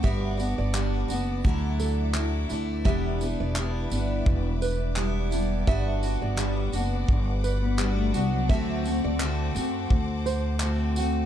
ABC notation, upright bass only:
X:1
M:4/4
L:1/16
Q:"Swing 16ths" 1/4=85
K:G
V:1 name="Upright bass" clef=bass
G,,,3 G,,,3 F,,,2 D,,6 D,,2 | E,,,3 E,,,3 G,,,2 E,,,8 | G,,,3 G,,,3 F,,,2 G,,,6 C,,2 | D,,3 D,,3 F,,2 D,,8 |]